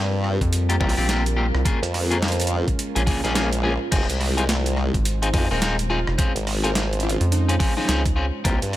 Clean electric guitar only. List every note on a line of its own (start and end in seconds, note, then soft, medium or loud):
0.69 0.75 A#3 medium
0.69 0.75 C4 medium
0.69 0.75 F4 medium
0.69 0.75 G4 medium
0.80 0.94 A#3 medium
0.80 0.94 C4 medium
0.80 0.94 F4 medium
0.80 0.94 G4 loud
0.97 1.06 A#3 medium
0.97 1.06 C4 medium
0.97 1.06 F4 medium
0.97 1.06 G4 medium
1.09 1.23 A#3 medium
1.09 1.22 C4 medium
1.09 1.23 F4 medium
1.09 1.22 G4 medium
1.37 1.46 A#3 medium
1.37 1.46 C4 medium
1.37 1.46 F4 medium
1.37 1.46 G4 medium
1.65 1.79 A#3 medium
1.65 1.79 C#4 medium
1.65 1.79 F4 medium
1.65 1.79 G#4 medium
2.11 2.17 A#3 medium
2.11 2.17 C#4 medium
2.11 2.17 F4 medium
2.11 2.17 G#4 medium
2.95 3.01 A#3 medium
2.95 3.02 C#4 medium
2.95 3.02 F4 medium
2.95 3.01 G#4 medium
3.07 3.20 A#3 medium
3.07 3.20 C#4 medium
3.07 3.20 F4 medium
3.07 3.20 G#4 loud
3.24 3.33 A#3 medium
3.24 3.33 C#4 medium
3.24 3.33 F4 medium
3.24 3.33 G#4 medium
3.35 3.49 A#3 loud
3.35 3.49 C#4 medium
3.35 3.49 F4 medium
3.35 3.49 G#4 medium
3.63 3.72 A#3 medium
3.63 3.72 C#4 medium
3.63 3.72 F4 medium
3.63 3.72 G#4 medium
3.92 4.06 C4 medium
3.92 4.06 D#4 medium
3.92 4.06 F4 medium
3.92 4.05 G#4 loud
4.37 4.43 C4 medium
4.37 4.43 D#4 medium
4.37 4.43 F4 medium
4.37 4.43 G#4 medium
5.22 5.28 C4 medium
5.22 5.28 D#4 medium
5.22 5.28 F4 medium
5.22 5.28 G#4 medium
5.34 5.47 C4 medium
5.34 5.47 D#4 medium
5.34 5.47 F4 medium
5.34 5.47 G#4 loud
5.51 5.59 C4 medium
5.51 5.59 D#4 medium
5.51 5.59 F4 medium
5.51 5.59 G#4 medium
5.62 5.75 C4 medium
5.62 5.76 D#4 medium
5.62 5.75 F4 medium
5.62 5.76 G#4 medium
5.90 5.99 C4 medium
5.90 5.99 D#4 medium
5.90 5.99 F4 medium
5.90 5.99 G#4 medium
6.18 6.32 C4 loud
6.18 6.32 C#4 medium
6.18 6.32 F4 medium
6.18 6.32 G#4 medium
6.64 6.70 C4 medium
6.64 6.70 C#4 medium
6.64 6.70 F4 medium
6.64 6.70 G#4 medium
7.49 7.54 C4 medium
7.49 7.54 C#4 medium
7.49 7.54 F4 medium
7.49 7.54 G#4 medium
7.60 7.73 C4 medium
7.60 7.73 C#4 medium
7.60 7.73 F4 medium
7.60 7.73 G#4 loud
7.77 7.86 C4 medium
7.77 7.86 C#4 medium
7.77 7.86 F4 medium
7.77 7.86 G#4 medium
7.88 8.02 C4 medium
7.88 8.02 C#4 medium
7.88 8.02 F4 medium
7.88 8.02 G#4 medium
8.16 8.25 C4 medium
8.16 8.25 C#4 medium
8.16 8.25 F4 medium
8.16 8.25 G#4 medium
8.44 8.58 A#3 medium
8.44 8.58 C4 medium
8.44 8.58 F4 medium
8.44 8.58 G4 medium